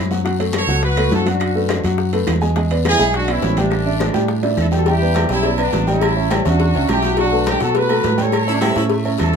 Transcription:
Already playing: F#2
0.11 F#3 F#4 F#5, high bongo, high conga, short guiro
0.24 F#3 F#4 F#5, high bongo, high conga, high timbale, long guiro
0.39 A3 A4 C#5, high bongo, high conga, high timbale
0.53 A4 C#5, high bongo, high conga, high timbale, low timbale, short guiro, claves
0.67 C#2 F#3 F#4 F#5, high bongo, high conga, short guiro
0.82 F#4 B4, high bongo, high conga, high timbale, long guiro
0.97 A3 A4 C#5, high conga, high timbale, claves
1.11 F#2 F#4 A4, high bongo, low bongo, high conga, low timbale, short guiro
1.26 F#3 F#4 F#5, high bongo, high conga, high timbale, short guiro
1.30 D4
1.40 high bongo, high conga, high timbale, long guiro, claves
1.55 A3 A4 B4, high bongo, high conga
1.69 high bongo, high conga, high timbale, low timbale, short guiro, claves
1.84 F#2 F#3 F#4 F#5, high bongo, high conga, high timbale, short guiro
1.98 high bongo, high conga, long guiro
2.13 A3 A4 B4, high conga, high timbale
2.27 E2, high bongo, low bongo, high conga, high timbale, low timbale, short guiro, claves
2.41 G#3 G#4 G#5, high bongo, high conga, short guiro
2.56 G#3 G#4 G#5, high bongo, high conga, high timbale, long guiro
2.71 B3 B4 D5, high bongo, high conga, high timbale
2.85 E4 G#4, high bongo, high conga, high timbale, low timbale, short guiro, claves
2.99 B1 G#3 G#4 G#5, high bongo, short guiro
3.13 D4 F#4, high bongo, high conga, high timbale, long guiro
3.28 B3 C#4 E4 B4 D5, high conga, high timbale, claves
3.42 A1, high bongo, low bongo, high conga, low timbale, short guiro
3.57 G3 A3 D4 G4 G5, high bongo, high conga, high timbale, short guiro
3.71 high bongo, high conga, high timbale, long guiro, claves
3.86 D4 D5 E5, high bongo, high conga
4.00 high bongo, high conga, high timbale, short guiro, claves
4.13 A2 G3 G4 G5, high bongo, high conga, low timbale, short guiro
4.28 high bongo, high conga, long guiro
4.43 D4 D5 E5, high conga, low timbale
4.57 E2 E4 A4, high bongo, low bongo, high conga, short guiro, claves
4.71 G3 G4 G5, high bongo, high conga, low timbale, short guiro
4.76 F#4 A4
4.86 G3 E4 G4 G5, cowbell, high conga, low agogo, long guiro
5.02 B3 B4 D5, high conga
5.14 cowbell, high conga, low timbale, low agogo, short guiro, claves
5.29 B1 G3 C#4 G4 G5, cowbell, high conga, short guiro
5.33 E4
5.43 B3 B4 D5, cowbell, high conga, low agogo, long guiro
5.58 B3 B4 D5, high conga, low agogo, claves
5.62 D4
5.73 A1, cowbell, high conga, low timbale, short guiro
5.87 G3 C#4 E4 G4 G5, high conga, low agogo, short guiro
6.01 cowbell, high conga, low agogo, long guiro, claves
6.16 C#4 C#5 E5, high conga
6.30 G3 G4 G5, cowbell, high conga, low timbale, low agogo, short guiro, claves
6.45 E2 C#4 D4 F#4 C#5 E5, cowbell, high conga, low agogo, short guiro
6.60 cowbell, high conga, long guiro
6.75 C#2 C#4 C#5 E5, high conga, low agogo
6.88 B1 E4 G4, cowbell, high conga, low timbale, low agogo, short guiro, claves
7.02 F#3 F#4 F#5, cowbell, short guiro
7.17 F#3 D4 F#4 F#5, cowbell, high conga, low agogo, long guiro
7.32 A3 A4 B4, high conga
7.46 D4 G4, cowbell, high conga, low timbale, low agogo, short guiro, claves
7.60 B2 F#3 F#4 A4 F#5, cowbell, high conga, short guiro
7.75 A3 F#4 A4 B4, cowbell, high conga, low agogo, long guiro
7.89 A3 A4 B4, high conga, low agogo, claves
8.03 A2, cowbell, high conga, low timbale, short guiro
8.18 G3 G4 A4 C#5 G5, high conga, low agogo, short guiro
8.32 cowbell, low agogo, long guiro, claves
8.47 C#4 E4 C#5 E5, high conga
8.54 D4
8.61 G3 E4 G4 G5, cowbell, high conga, low timbale, low agogo, short guiro, claves
8.76 A2 C#4 E4 C#5 E5, cowbell, high conga, low agogo, short guiro
8.90 A3, cowbell, high conga, long guiro
9.05 C#4 C#5 E5, high conga, low agogo
9.18 E2 E4 A4, cowbell, high conga, low timbale, low agogo, short guiro, claves

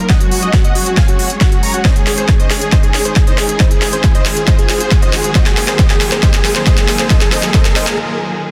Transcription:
Already playing: F#3, riser
0.09 G#3 C#4 G#4 C#5 D#5 F#5, kick, snare, closed hi-hat
0.21 F#4, closed hi-hat
0.31 F#4, open hi-hat
0.42 F#4 D#5, closed hi-hat
0.53 F#4, kick, snare, closed hi-hat
0.64 D#5 F#5, closed hi-hat
0.75 F#4, open hi-hat
0.86 F#4, closed hi-hat
0.97 F5 G#5, kick, snare, closed hi-hat
1.08 F#4, closed hi-hat
1.19 F#4, open hi-hat
1.30 closed hi-hat
1.41 F#4, kick, snare, closed hi-hat
1.52 F#4, closed hi-hat
1.63 A#5 C#6, open hi-hat
1.74 F#4, closed hi-hat
1.85 D#3 C5 D#5, kick, snare, closed hi-hat
1.96 G#4, closed hi-hat
2.07 G#4, snare, open hi-hat
2.18 G#4 C5, closed hi-hat
2.29 G#4, kick, snare, closed hi-hat
2.40 C5 D#5, closed hi-hat
2.51 G#4, snare, open hi-hat
2.61 G#4, closed hi-hat
2.72 C5 D#5, kick, snare, closed hi-hat
2.83 G#4, closed hi-hat
2.94 G#4, snare, open hi-hat
3.05 G#4 C5, closed hi-hat
3.16 G#4, kick, snare, closed hi-hat
3.27 C5 D#5, closed hi-hat
3.38 G#4, snare, open hi-hat
3.49 G#4, closed hi-hat
3.60 C5 D#5, kick, snare, closed hi-hat
3.71 G#4, closed hi-hat
3.82 G#4, snare, open hi-hat
3.93 G#4 C5, closed hi-hat
4.04 G#4, kick, snare, closed hi-hat
4.15 C5 D#5, closed hi-hat
4.26 G#4, snare, open hi-hat
4.37 G#4, closed hi-hat
4.48 C5 D#5, kick, snare, closed hi-hat
4.59 G#4, closed hi-hat
4.69 G#4, snare, open hi-hat
4.80 G#4 C5, closed hi-hat
4.91 G#4, kick, snare, closed hi-hat
5.02 C5 D#5, closed hi-hat
5.13 G#4, snare, open hi-hat
5.24 G#4, closed hi-hat
5.35 F#3 A#3 F4 A#4 C5 D#5, kick, snare, closed hi-hat
5.46 G#4, snare, closed hi-hat
5.57 G#4, snare, open hi-hat
5.68 G#4 C5, snare, closed hi-hat
5.79 C5 D#5, kick, snare, closed hi-hat
5.90 G#4, snare, closed hi-hat
6.01 G#4, snare, open hi-hat
6.12 G#4 C5, snare, closed hi-hat
6.23 C5 D#5, kick, snare, closed hi-hat
6.34 G#4, snare, closed hi-hat
6.45 G#4, snare, open hi-hat
6.56 G#4 C5, snare, closed hi-hat
6.67 C5 D#5, kick, snare, closed hi-hat
6.78 G#4, snare, closed hi-hat
6.88 G#4, snare, open hi-hat
6.99 G#4 C5, snare, closed hi-hat
7.10 G#4 C5 D#5, kick, snare, closed hi-hat
7.21 G#4, snare, closed hi-hat
7.32 C5 D#5, snare, open hi-hat
7.43 G#4, snare, closed hi-hat
7.54 C5 D#5, kick, snare, closed hi-hat
7.65 G#4, snare, closed hi-hat
7.76 C5 D#5, snare, open hi-hat
7.87 G#4, snare, closed hi-hat

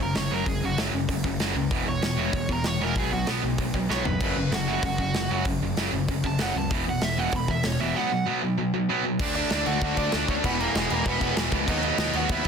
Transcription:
0.00 F#1 F#2 C#3 A#4
0.15 F#1 F#2 C#3 C#5, snare, open hi-hat
0.30 F#1 F#2 C#3 F#3 A#4
0.46 F#1 F#2 C#3 G#4, kick, open hi-hat
0.62 F#1 F#2 C#3 F#4
0.77 F#1 F#2 C#3 F#3, snare, open hi-hat
0.93 F#1 F#2 C#3
1.09 F#1 F#2 C#3, kick, open hi-hat
1.24 F#1 F#2 C#3, kick
1.40 F#1 F#2 C#3 F#3, snare, open hi-hat
1.55 C#2 F#2 C#3
1.70 E1 E2 B2 E3, kick, open hi-hat
1.87 E1 E2 B2 C#5
2.02 E1 E2 B2, snare, open hi-hat
2.18 E2 B2 E3
2.33 E1 E2 B2, kick, open hi-hat
2.49 E1 E2 B2 A#4, kick
2.64 E1 E2 B2 C#5, snare, open hi-hat
2.80 E1 E2 B2 E3 A#4
2.95 B1 B2 F#3 B3 G#4, kick, open hi-hat
3.12 B1 B2 F#3 F#4
3.26 B1 B2 F#3 B3, snare, open hi-hat
3.43 B1 B2 F#3
3.58 B1 B2 F#3, kick, open hi-hat
3.74 B1 B2 F#3, kick
3.89 B1 B2 F#3 B3 C#5, snare
4.05 F#1 B2 F#3 B4, floor tom
4.20 F#1 F#2 C#3 F#3, kick, crash
4.36 F#1 F#2 C#3
4.51 F#1 F#2 C#3 F#4, snare, open hi-hat
4.68 F#2 C#3 F#3
4.83 F#1 F#2 C#3 F#4, kick, open hi-hat
4.98 F#1 F#2 C#3, kick
5.14 F#1 F#2 C#3, snare, open hi-hat
5.30 F#1 F#2 C#3 F#3
5.45 F#1 F#2 C#3, kick, open hi-hat
5.61 F#1 F#2 C#3
5.77 F#1 F#2 C#3 F#3, snare, open hi-hat
5.92 F#1 F#2 C#3
6.08 F#1 F#2 C#3, kick, open hi-hat
6.24 F#1 F#2 C#3 A5, kick
6.38 F#1 F#2 C#3 F#3 F#5, snare, open hi-hat
6.55 C#2 F#2 C#3 A5
6.71 E1 E2 B2 E3, kick, open hi-hat
6.86 E1 E2 B2 F#5
7.01 E1 E2 B2 E5, snare, open hi-hat
7.18 E2 B2 E3 F#5
7.32 E1 E2 B2, kick, open hi-hat
7.36 B5
7.48 E1 E2 B2 E5, kick
7.63 E1 E2 B2 C#5, snare, open hi-hat
7.79 E1 E2 B2 E3 E5
7.94 B2 F#3 B3 F#5
8.11 B2 F#3
8.26 B2 F#3 B3
8.42 B2 F#3
8.57 B2 F#3
8.74 B2 F#3
8.89 B2 F#3 B3
9.05 B2 F#3
9.19 D2 D3 A3 D4 D5, kick, crash
9.35 D3 A3 D4 D5, crash
9.50 D2 D3 A3 D4, snare, crash
9.66 D2 D3 A3 D4 F#4 F#5, crash
9.81 D2 D3 A3 D4, kick, crash
9.97 D2 D3 A3 D4 D5, kick, crash
10.12 D2 D3 A3 D4, snare, crash
10.28 D2 D3 A3 C#4 D4 C#5, kick, crash
10.44 E1 E2 B2 E3 B3 B4, kick, crash
10.59 E2 B2 E3 A#3 A#4, crash
10.74 E1 E2 B2 E3 G#3 G#4, snare, crash
10.90 E1 E2 B2 E3 A#3 A#4, crash
11.05 E1 E2 B2 E3 B3 B4, kick, crash
11.21 E1 E2 B2 E3, kick, crash
11.36 E1 E2 B2 E3, snare, crash
11.52 C#2 E2 B2 E3, kick, crash
11.66 D#2 B2 F#3 B3 D#4, kick, crash
11.72 D#5
11.82 B2 F#3 B3 D#4, crash
11.87 D#5
11.98 D#2 B2 F#3 B3, snare, crash
12.13 D#2 B2 F#3 B3 F#4 F#5, crash
12.29 D#2 B2 F#3 B3 E4 E5, kick, crash
12.44 B3, crash

